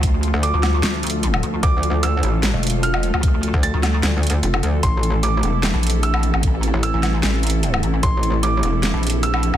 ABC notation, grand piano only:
X:1
M:4/4
L:1/8
Q:"Swing 16ths" 1/4=150
K:Dm
V:1 name="Grand piano"
z2 d'6 | d' z e'4 f' z | z2 a'6 | c' z d'4 e' z |
z2 e'6 | c' z d'4 e' z |]